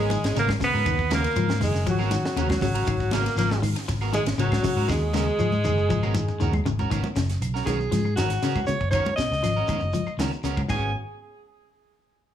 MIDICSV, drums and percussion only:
0, 0, Header, 1, 3, 480
1, 0, Start_track
1, 0, Tempo, 504202
1, 823, Time_signature, 4, 2, 24, 8
1, 11752, End_track
2, 0, Start_track
2, 0, Title_t, "Shekere"
2, 0, Note_on_c, 9, 82, 32
2, 92, Note_off_c, 9, 82, 0
2, 114, Note_on_c, 9, 82, 73
2, 209, Note_off_c, 9, 82, 0
2, 233, Note_on_c, 9, 82, 31
2, 328, Note_off_c, 9, 82, 0
2, 348, Note_on_c, 9, 82, 91
2, 443, Note_off_c, 9, 82, 0
2, 472, Note_on_c, 9, 82, 31
2, 567, Note_off_c, 9, 82, 0
2, 584, Note_on_c, 9, 82, 75
2, 679, Note_off_c, 9, 82, 0
2, 709, Note_on_c, 9, 82, 30
2, 804, Note_off_c, 9, 82, 0
2, 822, Note_on_c, 9, 82, 95
2, 918, Note_off_c, 9, 82, 0
2, 943, Note_on_c, 9, 82, 29
2, 1038, Note_off_c, 9, 82, 0
2, 1055, Note_on_c, 9, 82, 77
2, 1150, Note_off_c, 9, 82, 0
2, 1176, Note_on_c, 9, 82, 29
2, 1271, Note_off_c, 9, 82, 0
2, 1293, Note_on_c, 9, 82, 92
2, 1388, Note_off_c, 9, 82, 0
2, 1420, Note_on_c, 9, 82, 31
2, 1516, Note_off_c, 9, 82, 0
2, 1543, Note_on_c, 9, 82, 79
2, 1638, Note_off_c, 9, 82, 0
2, 1669, Note_on_c, 9, 82, 30
2, 1764, Note_off_c, 9, 82, 0
2, 1780, Note_on_c, 9, 82, 89
2, 1875, Note_off_c, 9, 82, 0
2, 1908, Note_on_c, 9, 82, 31
2, 2003, Note_off_c, 9, 82, 0
2, 2020, Note_on_c, 9, 82, 73
2, 2115, Note_off_c, 9, 82, 0
2, 2141, Note_on_c, 9, 82, 31
2, 2236, Note_off_c, 9, 82, 0
2, 2258, Note_on_c, 9, 82, 92
2, 2353, Note_off_c, 9, 82, 0
2, 2383, Note_on_c, 9, 82, 32
2, 2478, Note_off_c, 9, 82, 0
2, 2494, Note_on_c, 9, 82, 78
2, 2589, Note_off_c, 9, 82, 0
2, 2614, Note_on_c, 9, 82, 27
2, 2709, Note_off_c, 9, 82, 0
2, 2727, Note_on_c, 9, 82, 96
2, 2822, Note_off_c, 9, 82, 0
2, 2858, Note_on_c, 9, 82, 29
2, 2953, Note_off_c, 9, 82, 0
2, 2975, Note_on_c, 9, 82, 72
2, 3071, Note_off_c, 9, 82, 0
2, 3099, Note_on_c, 9, 82, 31
2, 3194, Note_off_c, 9, 82, 0
2, 3209, Note_on_c, 9, 82, 92
2, 3304, Note_off_c, 9, 82, 0
2, 3342, Note_on_c, 9, 82, 30
2, 3437, Note_off_c, 9, 82, 0
2, 3458, Note_on_c, 9, 82, 78
2, 3553, Note_off_c, 9, 82, 0
2, 3579, Note_on_c, 9, 82, 29
2, 3675, Note_off_c, 9, 82, 0
2, 3697, Note_on_c, 9, 82, 88
2, 3792, Note_off_c, 9, 82, 0
2, 3824, Note_on_c, 9, 82, 30
2, 3919, Note_off_c, 9, 82, 0
2, 3938, Note_on_c, 9, 82, 74
2, 4033, Note_off_c, 9, 82, 0
2, 4063, Note_on_c, 9, 82, 30
2, 4159, Note_off_c, 9, 82, 0
2, 4172, Note_on_c, 9, 82, 95
2, 4267, Note_off_c, 9, 82, 0
2, 4299, Note_on_c, 9, 82, 29
2, 4394, Note_off_c, 9, 82, 0
2, 4415, Note_on_c, 9, 82, 79
2, 4510, Note_off_c, 9, 82, 0
2, 4541, Note_on_c, 9, 82, 30
2, 4636, Note_off_c, 9, 82, 0
2, 4649, Note_on_c, 9, 82, 96
2, 4744, Note_off_c, 9, 82, 0
2, 4777, Note_on_c, 9, 82, 30
2, 4872, Note_off_c, 9, 82, 0
2, 4891, Note_on_c, 9, 82, 72
2, 4986, Note_off_c, 9, 82, 0
2, 5022, Note_on_c, 9, 82, 30
2, 5117, Note_off_c, 9, 82, 0
2, 5132, Note_on_c, 9, 82, 91
2, 5227, Note_off_c, 9, 82, 0
2, 5262, Note_on_c, 9, 82, 30
2, 5357, Note_off_c, 9, 82, 0
2, 5373, Note_on_c, 9, 82, 77
2, 5468, Note_off_c, 9, 82, 0
2, 5502, Note_on_c, 9, 82, 32
2, 5597, Note_off_c, 9, 82, 0
2, 5621, Note_on_c, 9, 82, 87
2, 5716, Note_off_c, 9, 82, 0
2, 5744, Note_on_c, 9, 82, 30
2, 5840, Note_off_c, 9, 82, 0
2, 5857, Note_on_c, 9, 82, 79
2, 5953, Note_off_c, 9, 82, 0
2, 5986, Note_on_c, 9, 82, 31
2, 6081, Note_off_c, 9, 82, 0
2, 6098, Note_on_c, 9, 82, 95
2, 6193, Note_off_c, 9, 82, 0
2, 6225, Note_on_c, 9, 82, 30
2, 6320, Note_off_c, 9, 82, 0
2, 6343, Note_on_c, 9, 82, 75
2, 6438, Note_off_c, 9, 82, 0
2, 6466, Note_on_c, 9, 82, 29
2, 6561, Note_off_c, 9, 82, 0
2, 6585, Note_on_c, 9, 82, 83
2, 6680, Note_off_c, 9, 82, 0
2, 6698, Note_on_c, 9, 82, 28
2, 6793, Note_off_c, 9, 82, 0
2, 6815, Note_on_c, 9, 82, 69
2, 6910, Note_off_c, 9, 82, 0
2, 6953, Note_on_c, 9, 82, 27
2, 7048, Note_off_c, 9, 82, 0
2, 7067, Note_on_c, 9, 82, 89
2, 7162, Note_off_c, 9, 82, 0
2, 7192, Note_on_c, 9, 82, 27
2, 7287, Note_off_c, 9, 82, 0
2, 7306, Note_on_c, 9, 82, 69
2, 7401, Note_off_c, 9, 82, 0
2, 7427, Note_on_c, 9, 82, 27
2, 7522, Note_off_c, 9, 82, 0
2, 7545, Note_on_c, 9, 82, 84
2, 7640, Note_off_c, 9, 82, 0
2, 7670, Note_on_c, 9, 82, 28
2, 7765, Note_off_c, 9, 82, 0
2, 7784, Note_on_c, 9, 82, 72
2, 7879, Note_off_c, 9, 82, 0
2, 7903, Note_on_c, 9, 82, 28
2, 7998, Note_off_c, 9, 82, 0
2, 8022, Note_on_c, 9, 82, 86
2, 8117, Note_off_c, 9, 82, 0
2, 8145, Note_on_c, 9, 82, 27
2, 8240, Note_off_c, 9, 82, 0
2, 8253, Note_on_c, 9, 82, 72
2, 8348, Note_off_c, 9, 82, 0
2, 8379, Note_on_c, 9, 82, 27
2, 8474, Note_off_c, 9, 82, 0
2, 8489, Note_on_c, 9, 82, 84
2, 8584, Note_off_c, 9, 82, 0
2, 8618, Note_on_c, 9, 82, 28
2, 8713, Note_off_c, 9, 82, 0
2, 8735, Note_on_c, 9, 82, 68
2, 8831, Note_off_c, 9, 82, 0
2, 8863, Note_on_c, 9, 82, 29
2, 8958, Note_off_c, 9, 82, 0
2, 8984, Note_on_c, 9, 82, 82
2, 9079, Note_off_c, 9, 82, 0
2, 9102, Note_on_c, 9, 82, 27
2, 9197, Note_off_c, 9, 82, 0
2, 9213, Note_on_c, 9, 82, 68
2, 9308, Note_off_c, 9, 82, 0
2, 9332, Note_on_c, 9, 82, 30
2, 9428, Note_off_c, 9, 82, 0
2, 9454, Note_on_c, 9, 82, 83
2, 9549, Note_off_c, 9, 82, 0
2, 9581, Note_on_c, 9, 82, 28
2, 9677, Note_off_c, 9, 82, 0
2, 9704, Note_on_c, 9, 82, 72
2, 9800, Note_off_c, 9, 82, 0
2, 9831, Note_on_c, 9, 82, 29
2, 9927, Note_off_c, 9, 82, 0
2, 9936, Note_on_c, 9, 82, 89
2, 10031, Note_off_c, 9, 82, 0
2, 10064, Note_on_c, 9, 82, 28
2, 10160, Note_off_c, 9, 82, 0
2, 10179, Note_on_c, 9, 82, 98
2, 10274, Note_off_c, 9, 82, 0
2, 11752, End_track
3, 0, Start_track
3, 0, Title_t, "Drums"
3, 96, Note_on_c, 9, 63, 103
3, 106, Note_on_c, 9, 53, 56
3, 191, Note_off_c, 9, 63, 0
3, 201, Note_off_c, 9, 53, 0
3, 229, Note_on_c, 9, 53, 58
3, 238, Note_on_c, 9, 38, 81
3, 325, Note_off_c, 9, 53, 0
3, 333, Note_off_c, 9, 38, 0
3, 346, Note_on_c, 9, 53, 51
3, 355, Note_on_c, 9, 38, 28
3, 441, Note_off_c, 9, 53, 0
3, 450, Note_off_c, 9, 38, 0
3, 461, Note_on_c, 9, 63, 93
3, 463, Note_on_c, 9, 75, 72
3, 465, Note_on_c, 9, 36, 72
3, 472, Note_on_c, 9, 38, 70
3, 556, Note_off_c, 9, 63, 0
3, 559, Note_off_c, 9, 75, 0
3, 561, Note_off_c, 9, 36, 0
3, 567, Note_off_c, 9, 38, 0
3, 572, Note_on_c, 9, 64, 87
3, 581, Note_on_c, 9, 46, 61
3, 582, Note_on_c, 9, 36, 68
3, 667, Note_off_c, 9, 64, 0
3, 676, Note_off_c, 9, 46, 0
3, 677, Note_off_c, 9, 36, 0
3, 812, Note_on_c, 9, 75, 71
3, 818, Note_on_c, 9, 53, 51
3, 821, Note_on_c, 9, 36, 91
3, 908, Note_off_c, 9, 75, 0
3, 913, Note_off_c, 9, 53, 0
3, 916, Note_off_c, 9, 36, 0
3, 942, Note_on_c, 9, 36, 70
3, 1037, Note_off_c, 9, 36, 0
3, 1056, Note_on_c, 9, 53, 53
3, 1059, Note_on_c, 9, 63, 97
3, 1064, Note_on_c, 9, 38, 80
3, 1151, Note_off_c, 9, 53, 0
3, 1154, Note_off_c, 9, 63, 0
3, 1159, Note_off_c, 9, 38, 0
3, 1182, Note_on_c, 9, 53, 51
3, 1191, Note_on_c, 9, 38, 28
3, 1278, Note_off_c, 9, 53, 0
3, 1286, Note_off_c, 9, 38, 0
3, 1293, Note_on_c, 9, 75, 68
3, 1297, Note_on_c, 9, 53, 53
3, 1389, Note_off_c, 9, 75, 0
3, 1392, Note_off_c, 9, 53, 0
3, 1417, Note_on_c, 9, 63, 90
3, 1427, Note_on_c, 9, 38, 72
3, 1512, Note_off_c, 9, 63, 0
3, 1522, Note_off_c, 9, 38, 0
3, 1532, Note_on_c, 9, 64, 89
3, 1535, Note_on_c, 9, 75, 71
3, 1536, Note_on_c, 9, 46, 69
3, 1627, Note_off_c, 9, 64, 0
3, 1630, Note_off_c, 9, 75, 0
3, 1631, Note_off_c, 9, 46, 0
3, 1665, Note_on_c, 9, 38, 32
3, 1760, Note_off_c, 9, 38, 0
3, 1777, Note_on_c, 9, 36, 74
3, 1778, Note_on_c, 9, 53, 56
3, 1872, Note_off_c, 9, 36, 0
3, 1873, Note_off_c, 9, 53, 0
3, 1900, Note_on_c, 9, 75, 69
3, 1996, Note_off_c, 9, 75, 0
3, 2009, Note_on_c, 9, 63, 99
3, 2015, Note_on_c, 9, 53, 52
3, 2023, Note_on_c, 9, 38, 31
3, 2105, Note_off_c, 9, 63, 0
3, 2110, Note_off_c, 9, 53, 0
3, 2118, Note_off_c, 9, 38, 0
3, 2147, Note_on_c, 9, 38, 80
3, 2242, Note_off_c, 9, 38, 0
3, 2257, Note_on_c, 9, 53, 54
3, 2352, Note_off_c, 9, 53, 0
3, 2374, Note_on_c, 9, 63, 88
3, 2379, Note_on_c, 9, 36, 72
3, 2379, Note_on_c, 9, 75, 72
3, 2388, Note_on_c, 9, 38, 68
3, 2469, Note_off_c, 9, 63, 0
3, 2474, Note_off_c, 9, 75, 0
3, 2475, Note_off_c, 9, 36, 0
3, 2483, Note_off_c, 9, 38, 0
3, 2486, Note_on_c, 9, 64, 92
3, 2497, Note_on_c, 9, 36, 66
3, 2498, Note_on_c, 9, 46, 61
3, 2581, Note_off_c, 9, 64, 0
3, 2592, Note_off_c, 9, 36, 0
3, 2594, Note_off_c, 9, 46, 0
3, 2620, Note_on_c, 9, 53, 55
3, 2716, Note_off_c, 9, 53, 0
3, 2736, Note_on_c, 9, 53, 54
3, 2738, Note_on_c, 9, 36, 92
3, 2739, Note_on_c, 9, 75, 69
3, 2832, Note_off_c, 9, 53, 0
3, 2833, Note_off_c, 9, 36, 0
3, 2835, Note_off_c, 9, 75, 0
3, 2859, Note_on_c, 9, 36, 72
3, 2955, Note_off_c, 9, 36, 0
3, 2964, Note_on_c, 9, 63, 99
3, 2979, Note_on_c, 9, 53, 59
3, 2987, Note_on_c, 9, 38, 75
3, 3059, Note_off_c, 9, 63, 0
3, 3074, Note_off_c, 9, 53, 0
3, 3082, Note_off_c, 9, 38, 0
3, 3104, Note_on_c, 9, 53, 54
3, 3112, Note_on_c, 9, 38, 30
3, 3199, Note_off_c, 9, 53, 0
3, 3207, Note_off_c, 9, 38, 0
3, 3215, Note_on_c, 9, 75, 65
3, 3222, Note_on_c, 9, 53, 57
3, 3230, Note_on_c, 9, 38, 31
3, 3310, Note_off_c, 9, 75, 0
3, 3317, Note_off_c, 9, 53, 0
3, 3326, Note_off_c, 9, 38, 0
3, 3334, Note_on_c, 9, 63, 86
3, 3346, Note_on_c, 9, 38, 71
3, 3430, Note_off_c, 9, 63, 0
3, 3441, Note_off_c, 9, 38, 0
3, 3456, Note_on_c, 9, 46, 69
3, 3457, Note_on_c, 9, 64, 82
3, 3459, Note_on_c, 9, 75, 69
3, 3551, Note_off_c, 9, 46, 0
3, 3552, Note_off_c, 9, 64, 0
3, 3554, Note_off_c, 9, 75, 0
3, 3580, Note_on_c, 9, 53, 59
3, 3589, Note_on_c, 9, 38, 30
3, 3675, Note_off_c, 9, 53, 0
3, 3684, Note_off_c, 9, 38, 0
3, 3699, Note_on_c, 9, 36, 79
3, 3701, Note_on_c, 9, 53, 61
3, 3709, Note_on_c, 9, 38, 31
3, 3794, Note_off_c, 9, 36, 0
3, 3796, Note_off_c, 9, 53, 0
3, 3805, Note_off_c, 9, 38, 0
3, 3817, Note_on_c, 9, 75, 69
3, 3912, Note_off_c, 9, 75, 0
3, 3936, Note_on_c, 9, 63, 95
3, 3941, Note_on_c, 9, 53, 58
3, 4031, Note_off_c, 9, 63, 0
3, 4036, Note_off_c, 9, 53, 0
3, 4056, Note_on_c, 9, 64, 72
3, 4058, Note_on_c, 9, 53, 61
3, 4067, Note_on_c, 9, 38, 79
3, 4151, Note_off_c, 9, 64, 0
3, 4154, Note_off_c, 9, 53, 0
3, 4162, Note_off_c, 9, 38, 0
3, 4182, Note_on_c, 9, 53, 56
3, 4277, Note_off_c, 9, 53, 0
3, 4295, Note_on_c, 9, 75, 71
3, 4300, Note_on_c, 9, 63, 86
3, 4302, Note_on_c, 9, 36, 71
3, 4312, Note_on_c, 9, 38, 70
3, 4390, Note_off_c, 9, 75, 0
3, 4395, Note_off_c, 9, 63, 0
3, 4397, Note_off_c, 9, 36, 0
3, 4407, Note_off_c, 9, 38, 0
3, 4419, Note_on_c, 9, 46, 60
3, 4420, Note_on_c, 9, 64, 92
3, 4421, Note_on_c, 9, 36, 64
3, 4514, Note_off_c, 9, 46, 0
3, 4516, Note_off_c, 9, 36, 0
3, 4516, Note_off_c, 9, 64, 0
3, 4652, Note_on_c, 9, 75, 70
3, 4661, Note_on_c, 9, 36, 89
3, 4670, Note_on_c, 9, 38, 53
3, 4747, Note_off_c, 9, 75, 0
3, 4756, Note_off_c, 9, 36, 0
3, 4766, Note_off_c, 9, 38, 0
3, 4893, Note_on_c, 9, 63, 101
3, 4908, Note_on_c, 9, 38, 61
3, 4988, Note_off_c, 9, 63, 0
3, 5003, Note_off_c, 9, 38, 0
3, 5133, Note_on_c, 9, 75, 68
3, 5145, Note_on_c, 9, 48, 63
3, 5228, Note_off_c, 9, 75, 0
3, 5240, Note_off_c, 9, 48, 0
3, 5256, Note_on_c, 9, 63, 85
3, 5352, Note_off_c, 9, 63, 0
3, 5376, Note_on_c, 9, 64, 86
3, 5379, Note_on_c, 9, 75, 72
3, 5382, Note_on_c, 9, 48, 72
3, 5472, Note_off_c, 9, 64, 0
3, 5475, Note_off_c, 9, 75, 0
3, 5477, Note_off_c, 9, 48, 0
3, 5620, Note_on_c, 9, 47, 78
3, 5621, Note_on_c, 9, 36, 76
3, 5715, Note_off_c, 9, 47, 0
3, 5716, Note_off_c, 9, 36, 0
3, 5740, Note_on_c, 9, 75, 67
3, 5745, Note_on_c, 9, 47, 67
3, 5835, Note_off_c, 9, 75, 0
3, 5840, Note_off_c, 9, 47, 0
3, 5851, Note_on_c, 9, 63, 100
3, 5859, Note_on_c, 9, 45, 83
3, 5946, Note_off_c, 9, 63, 0
3, 5954, Note_off_c, 9, 45, 0
3, 5983, Note_on_c, 9, 45, 75
3, 6078, Note_off_c, 9, 45, 0
3, 6102, Note_on_c, 9, 45, 81
3, 6198, Note_off_c, 9, 45, 0
3, 6218, Note_on_c, 9, 63, 87
3, 6221, Note_on_c, 9, 43, 74
3, 6225, Note_on_c, 9, 75, 71
3, 6313, Note_off_c, 9, 63, 0
3, 6317, Note_off_c, 9, 43, 0
3, 6320, Note_off_c, 9, 75, 0
3, 6340, Note_on_c, 9, 64, 87
3, 6342, Note_on_c, 9, 43, 91
3, 6435, Note_off_c, 9, 64, 0
3, 6437, Note_off_c, 9, 43, 0
3, 6463, Note_on_c, 9, 63, 74
3, 6466, Note_on_c, 9, 43, 74
3, 6558, Note_off_c, 9, 63, 0
3, 6561, Note_off_c, 9, 43, 0
3, 6583, Note_on_c, 9, 36, 84
3, 6584, Note_on_c, 9, 42, 69
3, 6587, Note_on_c, 9, 75, 67
3, 6678, Note_off_c, 9, 36, 0
3, 6679, Note_off_c, 9, 42, 0
3, 6682, Note_off_c, 9, 75, 0
3, 6699, Note_on_c, 9, 63, 89
3, 6794, Note_off_c, 9, 63, 0
3, 6819, Note_on_c, 9, 42, 57
3, 6822, Note_on_c, 9, 36, 65
3, 6827, Note_on_c, 9, 38, 73
3, 6914, Note_off_c, 9, 42, 0
3, 6917, Note_off_c, 9, 36, 0
3, 6922, Note_off_c, 9, 38, 0
3, 6945, Note_on_c, 9, 42, 55
3, 6953, Note_on_c, 9, 38, 26
3, 7040, Note_off_c, 9, 42, 0
3, 7048, Note_off_c, 9, 38, 0
3, 7064, Note_on_c, 9, 75, 61
3, 7065, Note_on_c, 9, 42, 68
3, 7159, Note_off_c, 9, 75, 0
3, 7160, Note_off_c, 9, 42, 0
3, 7194, Note_on_c, 9, 38, 27
3, 7289, Note_off_c, 9, 38, 0
3, 7301, Note_on_c, 9, 42, 56
3, 7301, Note_on_c, 9, 63, 80
3, 7301, Note_on_c, 9, 64, 75
3, 7302, Note_on_c, 9, 36, 75
3, 7303, Note_on_c, 9, 75, 64
3, 7309, Note_on_c, 9, 38, 30
3, 7396, Note_off_c, 9, 42, 0
3, 7396, Note_off_c, 9, 63, 0
3, 7396, Note_off_c, 9, 64, 0
3, 7397, Note_off_c, 9, 36, 0
3, 7398, Note_off_c, 9, 75, 0
3, 7404, Note_off_c, 9, 38, 0
3, 7541, Note_on_c, 9, 42, 72
3, 7546, Note_on_c, 9, 63, 72
3, 7546, Note_on_c, 9, 64, 72
3, 7550, Note_on_c, 9, 38, 29
3, 7637, Note_off_c, 9, 42, 0
3, 7641, Note_off_c, 9, 63, 0
3, 7641, Note_off_c, 9, 64, 0
3, 7645, Note_off_c, 9, 38, 0
3, 7661, Note_on_c, 9, 75, 64
3, 7756, Note_off_c, 9, 75, 0
3, 7780, Note_on_c, 9, 42, 56
3, 7789, Note_on_c, 9, 38, 75
3, 7791, Note_on_c, 9, 63, 93
3, 7875, Note_off_c, 9, 42, 0
3, 7884, Note_off_c, 9, 38, 0
3, 7886, Note_off_c, 9, 63, 0
3, 7901, Note_on_c, 9, 42, 56
3, 7910, Note_on_c, 9, 38, 27
3, 7997, Note_off_c, 9, 42, 0
3, 8005, Note_off_c, 9, 38, 0
3, 8022, Note_on_c, 9, 42, 64
3, 8030, Note_on_c, 9, 38, 26
3, 8117, Note_off_c, 9, 42, 0
3, 8125, Note_off_c, 9, 38, 0
3, 8144, Note_on_c, 9, 75, 63
3, 8146, Note_on_c, 9, 36, 71
3, 8155, Note_on_c, 9, 63, 83
3, 8239, Note_off_c, 9, 75, 0
3, 8241, Note_off_c, 9, 36, 0
3, 8250, Note_off_c, 9, 63, 0
3, 8264, Note_on_c, 9, 42, 48
3, 8271, Note_on_c, 9, 63, 68
3, 8271, Note_on_c, 9, 64, 81
3, 8359, Note_off_c, 9, 42, 0
3, 8366, Note_off_c, 9, 63, 0
3, 8366, Note_off_c, 9, 64, 0
3, 8386, Note_on_c, 9, 36, 58
3, 8481, Note_off_c, 9, 36, 0
3, 8499, Note_on_c, 9, 42, 64
3, 8503, Note_on_c, 9, 36, 92
3, 8505, Note_on_c, 9, 75, 64
3, 8595, Note_off_c, 9, 42, 0
3, 8598, Note_off_c, 9, 36, 0
3, 8600, Note_off_c, 9, 75, 0
3, 8629, Note_on_c, 9, 63, 94
3, 8724, Note_off_c, 9, 63, 0
3, 8744, Note_on_c, 9, 36, 66
3, 8744, Note_on_c, 9, 42, 53
3, 8752, Note_on_c, 9, 38, 71
3, 8839, Note_off_c, 9, 36, 0
3, 8839, Note_off_c, 9, 42, 0
3, 8847, Note_off_c, 9, 38, 0
3, 8877, Note_on_c, 9, 38, 26
3, 8972, Note_off_c, 9, 38, 0
3, 8983, Note_on_c, 9, 42, 62
3, 8984, Note_on_c, 9, 75, 67
3, 8992, Note_on_c, 9, 38, 28
3, 9078, Note_off_c, 9, 42, 0
3, 9079, Note_off_c, 9, 75, 0
3, 9087, Note_off_c, 9, 38, 0
3, 9224, Note_on_c, 9, 36, 74
3, 9225, Note_on_c, 9, 42, 51
3, 9225, Note_on_c, 9, 63, 79
3, 9225, Note_on_c, 9, 64, 77
3, 9230, Note_on_c, 9, 75, 63
3, 9319, Note_off_c, 9, 36, 0
3, 9320, Note_off_c, 9, 42, 0
3, 9320, Note_off_c, 9, 63, 0
3, 9320, Note_off_c, 9, 64, 0
3, 9326, Note_off_c, 9, 75, 0
3, 9464, Note_on_c, 9, 63, 71
3, 9464, Note_on_c, 9, 64, 71
3, 9468, Note_on_c, 9, 42, 67
3, 9560, Note_off_c, 9, 63, 0
3, 9560, Note_off_c, 9, 64, 0
3, 9563, Note_off_c, 9, 42, 0
3, 9583, Note_on_c, 9, 75, 65
3, 9678, Note_off_c, 9, 75, 0
3, 9705, Note_on_c, 9, 42, 51
3, 9706, Note_on_c, 9, 63, 94
3, 9714, Note_on_c, 9, 38, 77
3, 9801, Note_off_c, 9, 42, 0
3, 9801, Note_off_c, 9, 63, 0
3, 9809, Note_off_c, 9, 38, 0
3, 9948, Note_on_c, 9, 42, 67
3, 10043, Note_off_c, 9, 42, 0
3, 10056, Note_on_c, 9, 75, 62
3, 10066, Note_on_c, 9, 36, 73
3, 10072, Note_on_c, 9, 63, 84
3, 10151, Note_off_c, 9, 75, 0
3, 10161, Note_off_c, 9, 36, 0
3, 10167, Note_off_c, 9, 63, 0
3, 10179, Note_on_c, 9, 75, 92
3, 10183, Note_on_c, 9, 36, 76
3, 10184, Note_on_c, 9, 49, 68
3, 10186, Note_on_c, 9, 64, 98
3, 10274, Note_off_c, 9, 75, 0
3, 10278, Note_off_c, 9, 36, 0
3, 10279, Note_off_c, 9, 49, 0
3, 10281, Note_off_c, 9, 64, 0
3, 11752, End_track
0, 0, End_of_file